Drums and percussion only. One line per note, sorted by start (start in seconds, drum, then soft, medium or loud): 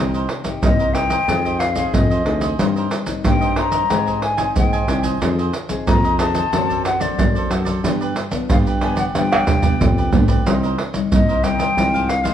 0.14 pandeiro soft
0.14 maracas soft
0.29 pandeiro medium
0.44 pandeiro medium
0.44 maracas medium
0.44 surdo soft
0.63 pandeiro medium
0.63 maracas medium
0.63 surdo medium
0.80 pandeiro soft
0.80 maracas soft
0.95 pandeiro medium
0.95 maracas medium
1.10 pandeiro medium
1.10 maracas medium
1.29 pandeiro medium
1.29 maracas medium
1.29 surdo medium
1.46 pandeiro soft
1.46 maracas soft
1.46 surdo soft
1.60 pandeiro medium
1.60 maracas medium
1.76 pandeiro soft
1.76 maracas medium
1.76 surdo soft
1.94 pandeiro medium
1.94 maracas medium
1.94 surdo medium
2.11 pandeiro soft
2.11 maracas soft
2.26 pandeiro medium
2.41 pandeiro medium
2.41 maracas medium
2.41 surdo soft
2.59 pandeiro medium
2.59 maracas medium
2.59 surdo medium
2.77 pandeiro soft
2.77 maracas soft
2.91 pandeiro medium
2.91 maracas medium
3.06 pandeiro medium
3.06 maracas medium
3.06 surdo soft
3.24 pandeiro medium
3.24 maracas medium
3.24 surdo medium
3.42 pandeiro soft
3.42 maracas soft
3.56 pandeiro medium
3.72 pandeiro medium
3.72 maracas medium
3.90 pandeiro medium
3.90 maracas medium
3.90 surdo medium
4.07 pandeiro soft
4.07 maracas soft
4.07 surdo soft
4.22 pandeiro medium
4.38 pandeiro medium
4.38 maracas medium
4.38 surdo soft
4.56 pandeiro medium
4.56 maracas medium
4.56 surdo medium
4.73 pandeiro soft
4.73 maracas soft
4.88 pandeiro medium
4.88 maracas medium
4.88 surdo soft
5.04 pandeiro soft
5.04 maracas medium
5.04 surdo soft
5.22 pandeiro medium
5.22 maracas medium
5.22 surdo medium
5.39 pandeiro soft
5.39 maracas soft
5.53 pandeiro medium
5.53 maracas medium
5.69 pandeiro medium
5.69 maracas medium
5.69 surdo soft
5.87 pandeiro medium
5.87 maracas medium
5.87 surdo loud
6.05 pandeiro soft
6.05 maracas soft
6.19 pandeiro medium
6.19 maracas medium
6.35 pandeiro medium
6.35 maracas medium
6.53 pandeiro medium
6.53 maracas medium
6.53 surdo medium
6.70 pandeiro soft
6.70 maracas soft
6.70 surdo soft
6.85 pandeiro medium
6.85 maracas medium
7.01 pandeiro soft
7.01 maracas medium
7.01 surdo soft
7.19 pandeiro medium
7.19 maracas medium
7.19 surdo medium
7.36 pandeiro soft
7.36 maracas soft
7.51 pandeiro medium
7.51 maracas medium
7.66 pandeiro soft
7.66 maracas medium
7.66 surdo soft
7.85 pandeiro medium
7.85 maracas medium
7.85 surdo medium
8.02 pandeiro soft
8.02 maracas soft
8.16 pandeiro medium
8.16 maracas medium
8.31 pandeiro medium
8.31 maracas medium
8.31 surdo soft
8.50 pandeiro medium
8.50 maracas medium
8.50 surdo loud
8.67 pandeiro soft
8.67 maracas soft
8.81 pandeiro medium
8.97 pandeiro medium
8.97 maracas medium
9.15 pandeiro medium
9.15 tamborim medium
9.15 maracas medium
9.15 surdo medium
9.33 pandeiro soft
9.33 tamborim medium
9.33 maracas soft
9.33 surdo soft
9.47 surdo medium
9.47 pandeiro medium
9.47 maracas medium
9.63 surdo medium
9.63 pandeiro medium
9.63 maracas medium
9.63 surdo soft
9.81 surdo medium
9.81 pandeiro medium
9.81 maracas medium
9.81 surdo medium
9.98 surdo medium
9.98 pandeiro soft
9.98 maracas soft
10.13 pandeiro medium
10.13 maracas medium
10.13 surdo medium
10.28 pandeiro soft
10.28 maracas medium
10.28 surdo medium
10.46 pandeiro medium
10.46 maracas medium
10.46 surdo medium
10.64 pandeiro soft
10.64 maracas soft
10.78 pandeiro medium
10.94 pandeiro medium
10.94 maracas medium
10.94 surdo soft
11.12 pandeiro medium
11.12 maracas medium
11.12 surdo loud
11.29 pandeiro soft
11.29 maracas soft
11.44 pandeiro medium
11.44 maracas medium
11.60 pandeiro medium
11.60 maracas medium
11.78 pandeiro medium
11.78 maracas medium
11.78 surdo medium
11.95 pandeiro soft
11.95 maracas soft
11.95 surdo soft
12.09 pandeiro medium
12.09 maracas medium
12.25 pandeiro medium
12.25 maracas medium
12.25 surdo soft